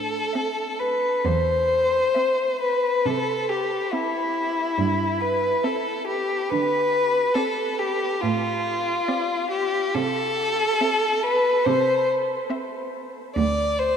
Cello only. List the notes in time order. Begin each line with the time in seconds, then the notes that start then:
Already playing: A2
1.25 E2
3.06 C3
4.78 G2
6.52 D3
8.23 A2
9.95 C3
11.66 C3
13.36 D2